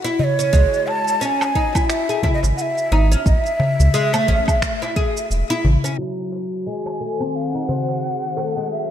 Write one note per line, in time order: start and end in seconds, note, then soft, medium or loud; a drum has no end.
0.00 5.98 F#4 medium
0.04 0.18 E4 loud
0.04 shaker soft
0.19 0.25 D#5 loud
0.19 darbuka dum medium
0.24 0.89 C#5 loud
0.39 0.52 C#4 medium
0.39 shaker medium
0.53 0.66 C#2 medium
0.53 1.20 G#3 medium
0.53 kick loud
0.53 shaker soft
0.74 shaker soft
0.87 1.21 A5 loud
0.87 darbuka ka soft
0.87 darbuka tek medium
1.08 shaker medium
1.21 1.54 C#4 medium
1.21 1.26 A5 medium
1.21 shaker medium
1.25 1.88 G#5 loud
1.41 darbuka ka medium
1.41 darbuka tek medium
1.41 low woodblock medium
1.41 shaker soft
1.55 1.74 D#4 medium
1.55 kick medium
1.75 2.07 E4 medium
1.75 kick medium
1.75 low woodblock medium
1.75 shaker medium
1.89 2.31 E5 loud
1.89 finger snap medium
1.89 shaker soft
2.09 2.23 G#4 medium
2.09 shaker soft
2.23 2.42 E4 medium
2.23 kick medium
2.23 darbuka tek medium
2.23 darbuka dum medium
2.34 2.40 D#5 medium
2.43 2.52 G#1 loud
2.43 darbuka tek medium
2.43 shaker medium
2.57 2.63 F#5 medium
2.57 shaker medium
2.62 3.21 E5 loud
2.78 shaker soft
2.92 3.15 G#1 medium
2.92 3.11 D#4 medium
2.92 darbuka tek medium
3.12 3.26 C#4 medium
3.12 shaker medium
3.25 3.38 A1 loud
3.25 3.36 D#5 loud
3.25 kick loud
3.25 shaker medium
3.36 5.26 E5 loud
3.46 shaker soft
3.59 darbuka ka soft
3.59 darbuka tek medium
3.59 darbuka dum medium
3.80 3.89 C#2 medium
3.80 darbuka dum medium
3.80 shaker medium
3.94 4.13 G#3 loud
3.94 shaker medium
4.13 4.27 A3 loud
4.13 darbuka ka medium
4.13 darbuka tek medium
4.13 low woodblock medium
4.13 shaker soft
4.28 4.41 A1 medium
4.28 4.47 C#4 loud
4.28 kick medium
4.48 kick medium
4.48 low woodblock medium
4.48 shaker medium
4.62 finger snap medium
4.62 kick medium
4.62 shaker medium
4.82 4.96 E4 medium
4.82 darbuka tek medium
4.82 shaker soft
4.96 5.15 G#4 medium
4.96 kick medium
4.96 darbuka ka soft
5.17 shaker medium
5.30 5.43 E1 medium
5.30 shaker medium
5.50 5.64 E4 loud
5.50 shaker soft
5.64 5.77 A1 loud
5.64 darbuka dum medium
5.84 5.98 C#4 medium
5.84 shaker medium
5.98 6.65 F#3 medium
5.98 8.91 F#4 medium
6.32 darbuka ka soft
6.32 darbuka tek medium
6.46 8.91 C5 medium
6.53 shaker medium
6.62 8.91 D#3 medium
6.67 6.99 G#3 medium
6.67 7.37 G#5 medium
6.86 darbuka ka medium
6.86 darbuka tek medium
6.86 low woodblock medium
6.86 shaker soft
6.97 7.20 A3 medium
6.97 8.91 G#4 medium
7.20 7.52 C4 medium
7.20 low woodblock soft
7.20 shaker medium
7.35 7.50 F5 medium
7.35 shaker soft
7.50 8.71 F#5 medium
7.54 7.68 D#4 medium
7.69 7.88 C4 medium
7.69 darbuka tek medium
7.69 darbuka dum medium
7.88 darbuka tek medium
7.88 shaker medium
8.04 shaker soft
8.24 shaker soft
8.37 8.56 A3 medium
8.37 darbuka tek medium
8.57 8.71 G#3 medium
8.57 shaker medium
8.71 8.91 F#3 medium
8.71 8.91 E5 medium
8.71 shaker soft